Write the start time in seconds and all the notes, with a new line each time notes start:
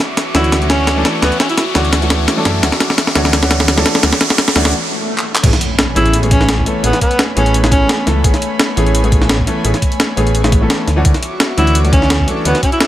Already playing: F#4 E5 C#6 D6, riser
0.17 snare, closed hi-hat
0.34 D2 E3 A3 C#4 D4 E4 F#4, snare, closed hi-hat
0.44 closed hi-hat
0.52 snare, closed hi-hat
0.61 E3 A3 C#4 D4 F#4, closed hi-hat
0.70 C#4, snare, closed hi-hat
0.87 snare, closed hi-hat
0.96 E3 A3 C#4 D4 A4
1.05 snare, closed hi-hat
1.22 D2 E3 A3 B3 C#4 D4 F#4, snare, closed hi-hat
1.32 closed hi-hat
1.40 C#4, snare, closed hi-hat
1.49 E4, closed hi-hat
1.58 E4, snare, closed hi-hat
1.74 D2 E3 A3 C#4 D4 F#4, snare, closed hi-hat
1.85 closed hi-hat
1.93 snare, closed hi-hat
2.01 E3 A3 C#4 D4 F#4, closed hi-hat
2.10 snare, closed hi-hat
2.19 D2
2.28 snare, closed hi-hat
2.36 E3 A3 C#4 D4 A4
2.45 F#2, snare, closed hi-hat
2.62 D2 E3 A3 C#4 D4 F#4, snare, closed hi-hat
2.72 snare, closed hi-hat
2.80 snare, closed hi-hat
2.90 snare
2.98 snare, closed hi-hat
3.07 snare
3.15 D2 E3 A3 C#4 D4 F#4, snare, closed hi-hat
3.25 snare, closed hi-hat
3.33 snare, closed hi-hat
3.42 E3 A3 C#4 D4 F#4, snare, closed hi-hat
3.51 snare, closed hi-hat
3.60 snare
3.68 snare, closed hi-hat
3.77 E3 A3 C#4 D4 A4, snare
3.86 snare, closed hi-hat
3.95 snare
4.02 D2 E3 A3 C#4 D4 F#4, snare, closed hi-hat
4.13 snare, closed hi-hat
4.21 snare, closed hi-hat
4.30 snare, closed hi-hat
4.38 snare, closed hi-hat
4.48 snare
4.55 D2 E3 A3 C#4 D4 F#4, snare, closed hi-hat
4.65 snare, closed hi-hat
4.73 swell
5.18 clap
5.35 clap
5.43 A1 E3 A3 B3 C#4 G#4 C#5 G#5 B5, kick, closed hi-hat, crash, impact
5.53 snare, closed hi-hat
5.61 closed hi-hat
5.79 snare, closed hi-hat
5.95 A1 E3 A3 B3 C#4 E4 G#4, closed hi-hat
6.06 closed hi-hat
6.13 closed hi-hat
6.22 E3 A3 B3 C#4 G#4, closed hi-hat
6.31 C#4, kick, closed hi-hat
6.41 snare
6.49 snare, closed hi-hat
6.58 kick
6.66 E3 A3 B3 C#4 A4, closed hi-hat
6.83 A1 E3 A3 B3 C#4 G#4, closed hi-hat
6.93 snare, closed hi-hat
7.01 B3, kick, closed hi-hat
7.11 closed hi-hat
7.19 snare, closed hi-hat
7.36 A1 E3 A3 B3 C#4 G#4, closed hi-hat
7.46 closed hi-hat
7.54 closed hi-hat
7.63 E3 A3 B3 C#4 G#4, snare, closed hi-hat
7.72 C#4, kick, closed hi-hat
7.81 A1
7.89 snare, closed hi-hat
8.06 C#2 E3 A3 B3 C#4 A4, snare, closed hi-hat
8.24 A1 E3 A3 B3 C#4 G#4 G#5, kick, closed hi-hat
8.34 snare, closed hi-hat
8.42 closed hi-hat
8.59 snare, closed hi-hat
8.76 A1 E3 A3 B3 C#4 G#4, closed hi-hat
8.86 closed hi-hat
8.95 closed hi-hat
9.03 E3 A3 B3 C#4 G#4, closed hi-hat
9.12 kick, closed hi-hat
9.21 snare
9.29 snare, closed hi-hat
9.39 kick
9.46 E3 A3 B3 C#4 A4, closed hi-hat
9.64 A1 E3 A3 B3 C#4 G#4, closed hi-hat
9.74 snare, closed hi-hat
9.82 kick, closed hi-hat
9.92 closed hi-hat
10.00 snare, closed hi-hat
10.16 A1 E3 A3 B3 C#4 G#4, closed hi-hat
10.27 closed hi-hat
10.35 closed hi-hat
10.43 E3 A3 B3 C#4 G#4, snare, closed hi-hat
10.52 kick, closed hi-hat
10.61 A1 E3 A3 B3 C#4 A4
10.70 snare, closed hi-hat
10.87 D2 F#4 E5 C#6 D6, snare, closed hi-hat
10.96 E3 A3 C#4 D4 F#4
11.04 D2 E3 A3 F#4, kick, closed hi-hat
11.14 snare, closed hi-hat
11.23 closed hi-hat
11.40 snare, closed hi-hat
11.57 D2 E3 A3 C#4 D4 E4 F#4, closed hi-hat
11.67 closed hi-hat
11.75 closed hi-hat
11.84 E3 A3 C#4 D4 F#4, closed hi-hat
11.93 C#4, kick, closed hi-hat
12.02 snare
12.10 snare, closed hi-hat
12.20 kick
12.27 E3 A3 C#4 D4 A4, closed hi-hat
12.45 D2 E3 A3 B3 C#4 D4 F#4, closed hi-hat
12.55 snare, closed hi-hat
12.63 C#4, kick, closed hi-hat
12.72 E4, closed hi-hat
12.80 E4, snare, closed hi-hat